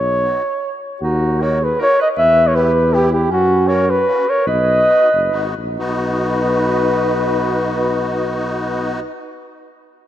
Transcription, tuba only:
0.00 0.36 B1 medium
1.02 1.76 D#2 loud
2.18 3.32 E2 loud
3.30 4.05 F#2 loud
4.46 4.88 B1 loud
5.12 5.30 F#1 medium
5.33 5.55 G#1 medium
5.58 5.78 A#1 medium
5.81 9.02 B1 medium

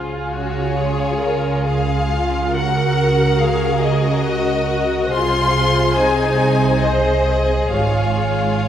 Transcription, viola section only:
0.00 0.30 F4 soft
0.34 0.78 F#4 soft
0.79 1.22 G#4 soft
1.21 1.66 A#4 soft
1.67 2.11 G#4 soft
2.13 2.56 F4 soft
2.57 3.41 A#4 medium
3.42 4.24 G#4 medium
4.24 5.14 F#4 medium
5.15 5.98 F4 soft
5.99 6.81 D#4 medium
6.84 7.27 C5 soft
7.30 7.74 G#4 soft
7.74 8.68 F4 soft

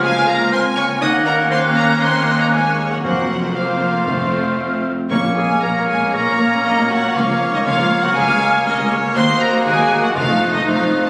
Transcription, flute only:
0.00 1.00 F6 loud
1.02 2.79 F#6 loud
3.04 3.37 F6 medium
3.55 4.04 F6 medium
4.07 4.83 F6 medium
5.11 5.59 F6 medium
5.63 6.13 F6 medium
6.14 7.13 F6 medium
7.15 7.64 F6 medium
7.65 9.13 F6 loud
9.17 10.15 F#6 loud
10.16 10.66 F#6 loud
10.67 11.10 F#6 medium

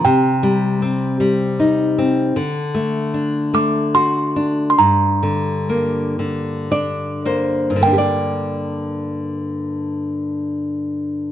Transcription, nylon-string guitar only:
0.05 2.32 C3 medium
0.43 1.19 G3 soft
0.82 1.97 C4 soft
1.20 2.32 G3 soft
1.60 2.34 D#4 medium
1.98 2.35 C4 soft
2.36 4.74 D3 medium
2.74 3.52 A3 soft
3.14 4.35 D4 soft
3.54 4.74 A3 soft
3.95 4.76 F#4 soft
4.36 4.77 D4 soft
4.78 7.69 G2 medium
5.23 6.18 D3 soft
5.69 6.71 A#3 soft
6.19 7.75 D3 soft
6.71 7.80 D4 soft
6.71 7.22 D5 medium
7.25 7.80 A#3 soft
7.25 7.80 C5 medium
7.70 11.32 G2 soft
7.76 11.32 D3 soft
7.81 11.32 A#3 soft
7.87 11.32 D4 soft
7.93 7.98 G4 soft
7.98 11.32 D5 medium

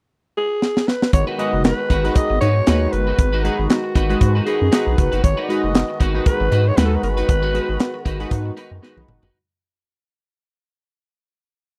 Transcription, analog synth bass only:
1.13 1.24 G#1 loud
1.53 1.73 F#1 medium
1.90 2.10 G#1 medium
2.30 2.39 G#1 loud
2.42 2.61 G#2 medium
2.68 2.87 D#2 loud
2.93 3.13 G1 medium
3.19 3.49 G#1 loud
3.59 3.67 G#1 medium
3.96 4.15 G#1 loud
4.21 4.41 G#2 loud
4.62 4.70 F#2 medium
4.87 4.95 B1 medium
4.98 5.09 F#1 loud
5.13 5.21 G1 medium
5.24 5.35 G#1 loud
5.64 5.83 F#1 medium
6.00 6.20 G#1 medium
6.41 6.49 G#1 loud
6.52 6.72 G#2 loud
6.77 6.97 D#2 loud
7.03 7.23 G1 medium
7.29 7.60 G#1 loud
7.69 7.78 G#1 medium
8.06 8.25 G#1 medium
8.31 8.51 G#2 loud
8.71 8.80 F#2 medium
8.97 9.05 B1 medium
9.08 9.19 F#1 loud
9.22 9.31 G1 medium

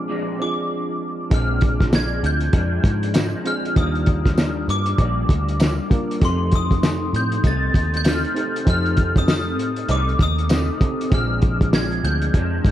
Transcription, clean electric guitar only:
0.08 0.39 A#2 medium
0.08 0.40 F3 medium
0.08 0.39 G#3 medium
0.08 0.37 D4 medium
0.39 1.31 F3 soft
0.39 1.31 G#3 soft
0.39 1.32 D4 soft
1.30 1.90 A#2 medium
1.30 1.91 F3 medium
1.30 1.92 G#3 medium
1.30 1.94 D4 medium
1.91 2.51 A#2 medium
1.91 2.52 F3 soft
1.91 2.53 G#3 medium
1.91 2.55 D4 medium
2.53 3.13 A#2 medium
2.53 3.14 F3 medium
2.53 3.15 G#3 medium
2.53 3.16 D4 medium
3.14 3.76 A#2 medium
3.14 3.76 F3 medium
3.14 3.77 G#3 medium
3.14 3.78 D4 medium
3.76 4.37 D#3 medium
3.76 4.37 G3 medium
3.76 4.38 A#3 medium
3.76 4.39 D4 medium
4.37 5.04 D#3 medium
4.37 4.98 G3 soft
4.37 4.99 A#3 medium
4.37 5.00 D4 medium
5.00 5.60 G3 medium
5.00 5.61 A#3 medium
5.00 5.61 D4 medium
5.61 6.22 G3 medium
5.61 6.22 A#3 medium
5.61 6.23 D4 medium
6.20 7.43 F2 medium
6.20 7.42 C3 medium
6.20 7.44 D#3 medium
6.20 7.44 A3 medium
6.24 7.45 D#4 medium
7.43 8.03 C3 medium
7.43 8.04 D#3 medium
7.43 8.06 A3 medium
7.43 8.06 D#4 medium
8.04 8.66 C3 medium
8.04 8.66 D#3 medium
8.04 8.67 A3 medium
8.04 8.67 D#4 medium
8.66 9.28 F2 medium
8.66 9.26 C3 medium
8.66 9.27 D#3 medium
8.66 9.28 A3 medium
8.66 9.29 D#4 medium
9.27 9.87 C3 soft
9.27 9.88 D#3 medium
9.27 9.90 A3 medium
9.27 9.90 D#4 medium
9.89 10.48 C3 medium
9.89 10.50 D#3 medium
9.89 10.51 A3 medium
9.89 10.51 D#4 medium
10.50 11.11 C3 medium
10.50 11.12 D#3 medium
10.50 11.12 A3 medium
10.50 11.13 D#4 medium
11.11 11.72 A#2 medium
11.11 11.73 F3 medium
11.11 11.73 G#3 medium
11.11 11.75 D4 medium
11.73 12.33 A#2 medium
11.73 12.34 F3 medium
11.73 12.35 G#3 medium
11.73 12.37 D4 medium
12.34 12.71 A#2 medium
12.34 12.71 F3 medium
12.34 12.71 G#3 medium
12.34 12.71 D4 medium

